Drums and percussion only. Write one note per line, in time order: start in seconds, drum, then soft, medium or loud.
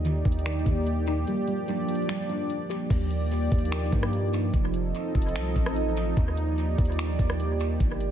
0.05 closed hi-hat medium
0.25 kick medium
0.25 closed hi-hat soft
0.32 closed hi-hat medium
0.39 closed hi-hat medium
0.46 finger snap loud
0.46 closed hi-hat medium
0.52 closed hi-hat medium
0.59 closed hi-hat soft
0.66 kick medium
0.66 closed hi-hat medium
0.87 closed hi-hat medium
1.07 closed hi-hat medium
1.27 closed hi-hat medium
1.47 closed hi-hat medium
1.68 closed hi-hat medium
1.88 closed hi-hat medium
1.95 closed hi-hat medium
2.02 closed hi-hat soft
2.09 finger snap loud
2.09 closed hi-hat medium
2.16 closed hi-hat medium
2.22 closed hi-hat medium
2.29 closed hi-hat medium
2.50 closed hi-hat medium
2.70 closed hi-hat medium
2.90 kick loud
2.90 closed hi-hat medium
2.90 crash loud
3.11 closed hi-hat medium
3.31 closed hi-hat medium
3.52 kick loud
3.52 closed hi-hat soft
3.58 closed hi-hat medium
3.65 closed hi-hat medium
3.72 finger snap loud
3.72 closed hi-hat medium
3.79 closed hi-hat medium
3.86 closed hi-hat soft
3.92 kick loud
3.92 closed hi-hat medium
4.03 cross-stick medium
4.13 closed hi-hat medium
4.33 closed hi-hat medium
4.54 kick loud
4.54 closed hi-hat medium
4.74 closed hi-hat medium
4.95 closed hi-hat medium
5.15 kick loud
5.15 closed hi-hat soft
5.22 closed hi-hat medium
5.29 closed hi-hat medium
5.35 finger snap loud
5.35 closed hi-hat medium
5.42 closed hi-hat medium
5.49 closed hi-hat soft
5.56 kick loud
5.56 closed hi-hat medium
5.66 cross-stick medium
5.76 closed hi-hat medium
5.97 closed hi-hat medium
6.17 kick loud
6.17 closed hi-hat medium
6.37 closed hi-hat medium
6.58 closed hi-hat medium
6.78 kick loud
6.78 closed hi-hat soft
6.85 closed hi-hat medium
6.92 closed hi-hat medium
6.99 finger snap loud
6.99 closed hi-hat medium
7.06 closed hi-hat medium
7.12 closed hi-hat soft
7.19 kick loud
7.19 closed hi-hat medium
7.30 cross-stick medium
7.40 closed hi-hat medium
7.60 closed hi-hat medium
7.80 kick loud
7.80 closed hi-hat medium
8.00 closed hi-hat medium